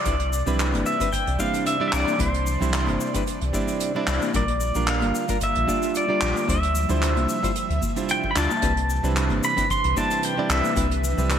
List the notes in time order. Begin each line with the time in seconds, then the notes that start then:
Already playing: D5
0.05 C2 C3 E3 G3 C4 D4 E4 B4 D5, kick, closed hi-hat, cabasa
0.20 closed hi-hat
0.33 cabasa
0.46 C2 G3 C4 D4 E4 B4, low conga, cabasa
0.59 clap, closed hi-hat, cabasa
0.74 G1, closed hi-hat, high conga
0.86 E5, cabasa
1.00 G3 C4 D4 E4 B4, kick, closed hi-hat, cabasa
1.13 G5, kick, closed hi-hat, cabasa
1.27 C2, closed hi-hat
1.39 G3 C4 D4 E4 D5 F5, kick, high conga, cabasa
1.54 closed hi-hat, high bongo, cabasa
1.66 E5, closed hi-hat, cabasa
1.80 G3 C4 D4 E4 D5
1.88 E5
1.93 C2 D5, clap, cabasa
2.08 high conga, cabasa
2.18 C2 G3 C4 D4 E4 B4 C5, kick, closed hi-hat, cabasa
2.34 closed hi-hat
2.46 low conga, cabasa
2.61 C2 G3 C4 D4 E4 C5, high bongo, low conga, cabasa
2.73 clap, closed hi-hat, cabasa
2.87 G1, closed hi-hat, high conga
3.00 cabasa
3.14 G3 C4 D4 E4 B4, kick, closed hi-hat, cabasa
3.27 closed hi-hat, cabasa
3.41 C2, closed hi-hat
3.53 G3 C4 D4 E4 D5, kick, high conga, cabasa
3.68 closed hi-hat, cabasa
3.80 closed hi-hat, cabasa
3.95 G3 C4 D4 E4 D5, high bongo
4.07 C2, clap, high bongo, cabasa
4.22 high conga, cabasa
4.33 A#1 D3 G3 A#3 D4 F4 A#4 D5, kick, closed hi-hat, cabasa
4.48 closed hi-hat
4.60 cabasa
4.75 A#1 G3 A#3 D4 F4 A#4, low conga, cabasa
4.87 F5, clap, closed hi-hat, cabasa
5.02 G1, closed hi-hat, high conga
5.15 cabasa
5.28 G3 A#3 D4 F4 A#4, kick, closed hi-hat, cabasa
5.41 E5, kick, closed hi-hat, cabasa
5.55 A#1, closed hi-hat
5.67 G3 A#3 D4 F4 D5, kick, high conga, cabasa
5.82 closed hi-hat, high bongo, cabasa
5.95 D5, closed hi-hat, cabasa
6.08 G3 A#3 D4 F4 D5
6.21 A#1, clap, cabasa
6.36 high conga, cabasa
6.47 D2 C3 F3 G3 D4 E4 F4 C5 E5, kick, closed hi-hat, cabasa
6.63 closed hi-hat
6.75 low conga, cabasa
6.89 D2 G3 D4 E4 F4 C5, high bongo, low conga, cabasa
7.02 clap, closed hi-hat, cabasa
7.17 C2, closed hi-hat, high conga
7.29 cabasa
7.43 G3 D4 E4 F4 C5, kick, closed hi-hat, cabasa
7.55 closed hi-hat, cabasa
7.70 D2, closed hi-hat
7.82 kick, high conga, cabasa
7.96 G3 D4 E4 F4 C5, closed hi-hat, cabasa
8.09 G5, closed hi-hat, cabasa
8.24 kick, high bongo
8.31 B5
8.35 D2 G3 D4 E4 F4 D5 A5, clap, high bongo, cabasa
8.51 high conga, cabasa
8.62 C2 E3 G3 C4 D4 E4 B4, kick, closed hi-hat, cabasa
8.77 closed hi-hat
8.90 cabasa
9.03 C2 G3 C4 D4 E4 B4, low conga, cabasa
9.16 clap, closed hi-hat, cabasa
9.30 G1, closed hi-hat, high conga
9.43 B5, cabasa
9.57 G3 C4 D4 E4 B4, kick, closed hi-hat, cabasa
9.70 C6, kick, closed hi-hat, cabasa
9.84 C2, closed hi-hat
9.96 G3 C4 D4 E4 D5 A5, kick, high conga, cabasa
10.11 closed hi-hat, high bongo, cabasa
10.23 G5, closed hi-hat, cabasa
10.37 G3 C4 D4 E4 D5
10.50 C2 E5, clap, cabasa
10.64 high conga, cabasa
10.76 C2 G3 C4 D4 E4 B4, kick, closed hi-hat, cabasa
10.91 closed hi-hat
11.04 low conga, cabasa
11.18 C2 G3 C4 D4 E4 B4, high bongo, low conga, cabasa
11.30 clap, closed hi-hat, cabasa